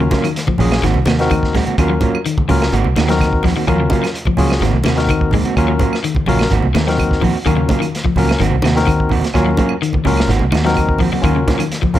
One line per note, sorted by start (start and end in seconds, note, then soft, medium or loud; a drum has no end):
0.00 0.22 C#3 medium
0.00 0.28 C#4 medium
0.00 0.29 F4 medium
0.00 0.29 F#4 medium
0.00 0.29 A#4 medium
0.11 0.26 F#3 medium
0.11 0.26 A#3 medium
0.11 0.27 C#4 medium
0.11 0.27 F4 medium
0.11 kick medium
0.11 snare soft
0.11 closed hi-hat soft
0.11 high conga medium
0.24 0.45 D#3 medium
0.24 closed hi-hat soft
0.24 claves medium
0.36 snare soft
0.36 closed hi-hat medium
0.47 0.69 F3 medium
0.47 kick medium
0.47 high conga medium
0.58 0.78 A#1 medium
0.58 0.74 F#3 medium
0.58 0.74 A#3 medium
0.58 0.83 C#4 medium
0.58 0.74 C#4 medium
0.58 0.83 F4 medium
0.58 0.74 F4 medium
0.58 0.83 F#4 medium
0.58 0.84 G#4 medium
0.58 open hi-hat medium
0.58 low conga medium
0.72 snare medium
0.72 claves medium
0.82 0.93 G#1 medium
0.82 0.98 D#3 medium
0.82 1.05 D#3 medium
0.82 0.98 A#3 medium
0.82 0.98 C4 medium
0.82 0.98 F#4 medium
0.82 snare soft
0.82 closed hi-hat medium
0.82 low conga medium
0.94 1.04 C2 medium
0.94 high conga medium
1.06 1.63 D#2 medium
1.06 1.28 C3 medium
1.06 1.19 D#3 medium
1.06 1.19 A#3 medium
1.06 1.18 C4 medium
1.06 1.18 F#4 medium
1.06 snare medium
1.06 closed hi-hat medium
1.06 high conga medium
1.06 claves medium
1.19 1.33 A#3 soft
1.19 1.33 C4 soft
1.19 1.53 C4 medium
1.19 1.53 D#4 medium
1.19 1.33 F#4 soft
1.19 1.53 F#4 medium
1.19 1.54 A#4 loud
1.19 snare medium
1.19 closed hi-hat medium
1.30 1.52 D#3 medium
1.30 kick medium
1.30 closed hi-hat medium
1.30 high conga medium
1.30 claves medium
1.43 kick medium
1.43 snare soft
1.55 1.66 D#3 medium
1.55 1.76 G#3 medium
1.55 1.67 A#3 medium
1.55 1.66 C4 medium
1.55 1.65 F#4 medium
1.55 kick medium
1.55 snare soft
1.55 open hi-hat medium
1.55 low conga medium
1.66 1.77 A#3 soft
1.66 1.78 C4 soft
1.66 1.78 F#4 medium
1.66 closed hi-hat soft
1.66 high conga medium
1.78 1.97 D#2 loud
1.78 1.92 F#3 medium
1.78 1.93 A#3 medium
1.78 1.93 C#4 medium
1.78 2.19 C#4 medium
1.78 1.93 F4 medium
1.78 2.20 F4 medium
1.78 2.20 F#4 medium
1.78 2.20 A#4 medium
1.78 kick medium
1.78 closed hi-hat medium
1.78 claves medium
1.90 2.11 F#3 medium
2.01 2.16 F#3 medium
2.01 2.16 A#3 medium
2.01 2.17 C#4 medium
2.01 2.17 F4 medium
2.01 kick medium
2.01 closed hi-hat medium
2.01 high conga medium
2.01 low conga medium
2.15 claves medium
2.25 2.47 D#3 medium
2.25 closed hi-hat medium
2.38 kick medium
2.38 high conga medium
2.48 2.68 C#2 medium
2.48 2.70 C#3 medium
2.48 2.63 F#3 medium
2.48 2.63 A#3 medium
2.48 2.72 C#4 medium
2.48 2.63 C#4 medium
2.48 2.73 F4 medium
2.48 2.64 F4 medium
2.48 2.73 F#4 medium
2.48 2.74 A#4 medium
2.48 open hi-hat medium
2.48 low conga medium
2.62 snare medium
2.62 claves medium
2.73 2.82 G#1 medium
2.73 2.87 D#3 medium
2.73 2.87 A#3 medium
2.73 2.87 C4 medium
2.73 2.88 F#4 medium
2.73 closed hi-hat medium
2.73 high conga medium
2.84 2.94 C2 medium
2.84 high conga medium
2.96 3.53 D#2 medium
2.96 3.07 D#3 medium
2.96 3.11 D#3 medium
2.96 3.11 A#3 medium
2.96 3.11 C4 medium
2.96 3.12 F#4 medium
2.96 snare medium
2.96 closed hi-hat medium
2.96 high conga medium
2.96 claves medium
3.08 3.30 F#3 medium
3.08 3.42 C4 medium
3.08 3.43 D#4 medium
3.08 3.43 F#4 medium
3.08 3.43 A#4 loud
3.08 snare medium
3.08 closed hi-hat medium
3.19 kick medium
3.19 snare soft
3.19 closed hi-hat medium
3.19 high conga medium
3.19 claves medium
3.33 kick medium
3.43 3.56 D#3 medium
3.43 3.55 F3 medium
3.43 3.55 A#3 medium
3.43 3.55 C4 medium
3.43 3.54 F#4 medium
3.43 kick medium
3.43 snare soft
3.43 open hi-hat medium
3.43 low conga medium
3.56 3.67 D#3 medium
3.56 3.66 A#3 soft
3.56 3.68 C4 medium
3.56 3.67 F#4 soft
3.67 3.87 D#2 loud
3.67 3.79 F3 medium
3.67 3.82 F#3 medium
3.67 3.82 A#3 medium
3.67 4.08 C#4 medium
3.67 3.82 C#4 medium
3.67 4.08 F4 medium
3.67 3.82 F4 medium
3.67 4.08 F#4 medium
3.67 4.09 A#4 medium
3.67 kick medium
3.67 closed hi-hat medium
3.67 claves medium
3.80 4.01 C#3 medium
3.90 4.05 F#3 medium
3.90 4.05 A#3 medium
3.90 4.06 C#4 medium
3.90 4.06 F4 medium
3.90 kick medium
3.90 closed hi-hat soft
3.90 high conga loud
4.03 muted clean electric guitar stroke medium
4.03 snare soft
4.03 closed hi-hat soft
4.03 claves medium
4.15 closed hi-hat medium
4.25 4.48 F3 medium
4.25 kick medium
4.25 high conga medium
4.37 4.57 C#2 medium
4.37 4.52 F#3 medium
4.37 4.52 A#3 medium
4.37 4.61 C#4 medium
4.37 4.53 C#4 medium
4.37 4.62 F4 medium
4.37 4.53 F4 medium
4.37 4.62 F#4 medium
4.37 4.62 G#4 medium
4.37 open hi-hat medium
4.37 low conga medium
4.50 snare medium
4.50 claves medium
4.60 4.71 G#1 medium
4.60 4.76 D#3 medium
4.60 4.83 D#3 medium
4.60 4.76 A#3 medium
4.60 4.77 C4 medium
4.60 4.77 F#4 medium
4.60 snare soft
4.60 closed hi-hat medium
4.60 low conga medium
4.71 4.83 C2 medium
4.71 high conga medium
4.84 5.42 D#2 medium
4.84 5.07 C3 medium
4.84 5.00 D#3 medium
4.84 5.00 A#3 medium
4.84 5.00 C4 medium
4.84 5.00 F#4 medium
4.84 snare medium
4.84 closed hi-hat soft
4.84 high conga medium
4.84 claves medium
4.96 5.31 C4 medium
4.96 5.31 D#4 medium
4.96 5.31 F#4 medium
4.96 5.32 A#4 loud
4.96 snare medium
4.96 closed hi-hat soft
5.07 5.31 D#3 medium
5.07 kick medium
5.07 closed hi-hat medium
5.07 high conga medium
5.07 claves medium
5.21 kick medium
5.31 5.45 D#3 medium
5.31 5.55 G#3 medium
5.31 5.45 A#3 medium
5.31 5.45 C4 medium
5.31 kick medium
5.31 open hi-hat medium
5.31 low conga medium
5.43 5.56 A#3 soft
5.43 5.57 C4 soft
5.43 5.57 F#4 soft
5.43 closed hi-hat medium
5.43 high conga medium
5.57 5.76 D#2 loud
5.57 5.71 F#3 medium
5.57 5.71 A#3 medium
5.57 5.97 C#4 medium
5.57 5.71 C#4 medium
5.57 5.98 F4 medium
5.57 5.72 F4 medium
5.57 5.98 F#4 medium
5.57 5.98 A#4 medium
5.57 kick medium
5.57 closed hi-hat medium
5.57 claves medium
5.68 5.90 F#3 medium
5.79 5.95 F#3 medium
5.79 5.95 A#3 medium
5.79 5.95 C#4 medium
5.79 5.96 F4 medium
5.79 kick medium
5.79 closed hi-hat medium
5.79 high conga loud
5.79 low conga medium
5.93 snare soft
5.93 claves medium
6.04 6.25 D#3 medium
6.04 closed hi-hat medium
6.15 kick medium
6.15 high conga medium
6.26 6.46 A#1 medium
6.26 6.49 C#3 medium
6.26 6.42 F#3 medium
6.26 6.42 A#3 medium
6.26 6.51 C#4 medium
6.26 6.43 C#4 medium
6.26 6.51 F4 medium
6.26 6.43 F4 medium
6.26 6.51 F#4 medium
6.26 6.52 A#4 medium
6.26 open hi-hat medium
6.26 low conga medium
6.39 snare medium
6.39 claves medium
6.51 6.61 G#1 medium
6.51 6.66 D#3 medium
6.51 6.66 A#3 medium
6.51 6.66 C4 medium
6.51 6.66 F#4 medium
6.51 closed hi-hat medium
6.51 high conga medium
6.51 low conga medium
6.62 6.72 C2 medium
6.62 high conga medium
6.75 7.31 D#2 medium
6.75 6.85 D#3 medium
6.75 6.89 D#3 medium
6.75 6.89 A#3 medium
6.75 6.90 C4 medium
6.75 snare medium
6.75 closed hi-hat medium
6.75 high conga medium
6.75 claves medium
6.87 7.08 F#3 medium
6.87 7.21 C4 medium
6.87 7.21 D#4 medium
6.87 7.21 F#4 medium
6.87 7.22 A#4 loud
6.87 snare medium
6.87 closed hi-hat soft
6.98 kick medium
6.98 closed hi-hat medium
6.98 high conga medium
6.98 claves medium
7.11 kick medium
7.11 snare soft
7.21 7.36 D#3 medium
7.21 7.32 F3 medium
7.21 7.37 A#3 medium
7.21 7.37 C4 medium
7.21 7.37 F#4 medium
7.21 kick medium
7.21 open hi-hat medium
7.21 low conga medium
7.45 7.65 D#2 loud
7.45 7.56 D#3 medium
7.45 7.60 F#3 medium
7.45 7.60 A#3 medium
7.45 7.86 C#4 medium
7.45 7.60 C#4 medium
7.45 7.86 F4 medium
7.45 7.60 F4 medium
7.45 7.87 F#4 medium
7.45 7.87 A#4 medium
7.45 kick medium
7.45 closed hi-hat medium
7.45 claves medium
7.57 7.78 C#3 medium
7.69 7.84 F#3 medium
7.69 7.84 A#3 medium
7.69 7.85 F4 medium
7.69 kick medium
7.69 closed hi-hat medium
7.69 high conga medium
7.80 8.02 D#3 medium
7.80 closed hi-hat soft
7.80 claves medium
7.95 snare soft
7.95 closed hi-hat medium
8.04 8.26 F3 medium
8.04 kick medium
8.04 high conga medium
8.16 8.35 C#2 medium
8.16 8.31 F#3 medium
8.16 8.31 A#3 medium
8.16 8.41 C#4 medium
8.16 8.31 C#4 medium
8.16 8.40 F4 medium
8.16 8.32 F4 medium
8.16 8.41 F#4 medium
8.16 8.41 A#4 medium
8.16 open hi-hat medium
8.16 low conga medium
8.29 snare medium
8.29 claves medium
8.39 8.50 G#1 medium
8.39 8.61 D#3 medium
8.39 8.55 D#3 medium
8.39 8.55 A#3 medium
8.39 8.55 C4 medium
8.39 8.55 F#4 medium
8.39 closed hi-hat medium
8.39 low conga medium
8.51 8.61 C2 medium
8.51 high conga medium
8.62 9.20 D#2 medium
8.62 8.85 C3 medium
8.62 8.78 D#3 medium
8.62 8.78 A#3 medium
8.62 8.78 C4 medium
8.62 8.79 F#4 medium
8.62 snare medium
8.62 closed hi-hat soft
8.62 high conga medium
8.62 claves medium
8.75 9.09 C4 medium
8.75 9.09 D#4 medium
8.75 9.10 F#4 medium
8.75 9.10 A#4 loud
8.75 snare medium
8.75 closed hi-hat soft
8.86 9.08 D#3 medium
8.86 kick medium
8.86 closed hi-hat medium
8.86 high conga medium
8.86 claves medium
9.00 kick medium
9.09 9.25 D#3 medium
9.09 9.25 A#3 medium
9.09 9.25 C4 medium
9.09 9.26 F#4 medium
9.09 kick medium
9.09 open hi-hat medium
9.09 low conga medium
9.21 snare soft
9.21 closed hi-hat soft
9.21 high conga medium
9.34 9.54 D#2 loud
9.34 9.49 F#3 medium
9.34 9.49 A#3 medium
9.34 9.75 C#4 medium
9.34 9.49 C#4 medium
9.34 9.75 F4 medium
9.34 9.49 F4 medium
9.34 9.76 F#4 medium
9.34 9.76 A#4 medium
9.34 kick medium
9.34 snare soft
9.34 closed hi-hat medium
9.34 claves medium
9.46 9.67 F#3 medium
9.57 9.73 F#3 medium
9.57 9.73 A#3 medium
9.57 9.73 C#4 medium
9.57 9.73 F4 medium
9.57 kick medium
9.57 closed hi-hat medium
9.57 high conga loud
9.69 claves medium
9.82 10.03 D#3 medium
9.82 closed hi-hat medium
9.93 kick medium
9.93 high conga medium
10.05 10.25 C#2 medium
10.05 10.26 C#3 medium
10.05 10.19 F#3 medium
10.05 10.20 A#3 medium
10.05 10.29 C#4 medium
10.05 10.20 C#4 medium
10.05 10.29 F4 medium
10.05 10.20 F4 medium
10.05 10.30 F#4 medium
10.05 10.30 A#4 medium
10.05 open hi-hat medium
10.05 low conga medium
10.17 snare medium
10.17 claves medium
10.27 10.39 G#1 medium
10.27 10.43 D#3 medium
10.27 10.43 A#3 medium
10.27 10.44 C4 medium
10.27 10.44 F#4 medium
10.27 closed hi-hat medium
10.27 low conga medium
10.32 snare soft
10.39 10.50 C2 medium
10.39 high conga medium
10.52 11.09 D#2 medium
10.52 10.65 D#3 medium
10.52 10.63 D#3 medium
10.52 10.65 A#3 medium
10.52 10.64 C4 medium
10.52 10.63 F#4 medium
10.52 snare medium
10.52 closed hi-hat medium
10.52 high conga medium
10.52 claves medium
10.64 10.86 F#3 medium
10.64 10.79 A#3 soft
10.64 10.98 C4 medium
10.64 10.79 C4 soft
10.64 10.99 D#4 medium
10.64 10.79 F#4 soft
10.64 10.99 F#4 medium
10.64 10.99 A#4 loud
10.64 snare medium
10.64 closed hi-hat medium
10.76 kick medium
10.76 closed hi-hat medium
10.76 high conga medium
10.76 claves medium
10.89 kick medium
10.98 11.12 D#3 medium
10.98 11.11 F3 medium
10.98 11.12 A#3 medium
10.98 11.12 C4 medium
10.98 11.11 F#4 medium
10.98 kick medium
10.98 open hi-hat medium
10.98 low conga medium
11.12 11.23 F#3 medium
11.12 11.23 A#3 soft
11.12 11.24 C4 soft
11.12 11.24 F#4 medium
11.12 high conga medium
11.22 11.42 D#2 loud
11.22 11.35 D#3 medium
11.22 11.38 F#3 medium
11.22 11.38 A#3 medium
11.22 11.63 C#4 medium
11.22 11.38 C#4 medium
11.22 11.64 F4 medium
11.22 11.38 F4 medium
11.22 11.64 F#4 medium
11.22 11.65 A#4 medium
11.22 kick medium
11.22 closed hi-hat medium
11.22 claves medium
11.36 11.57 C#3 medium
11.48 11.62 F#3 medium
11.48 11.62 A#3 medium
11.48 11.62 C#4 medium
11.48 11.63 F4 medium
11.48 kick medium
11.48 snare soft
11.48 closed hi-hat medium
11.48 high conga loud
11.48 low conga medium
11.59 11.80 D#3 medium
11.59 closed hi-hat soft
11.59 claves medium
11.72 snare soft
11.72 closed hi-hat medium
11.82 11.99 F3 medium
11.82 kick medium
11.82 high conga medium
11.93 11.99 C#2 medium
11.93 11.99 F#3 medium
11.93 11.99 C#4 medium
11.93 11.99 F4 medium
11.93 11.99 F#4 medium
11.93 11.99 A#4 medium
11.93 open hi-hat medium
11.93 low conga medium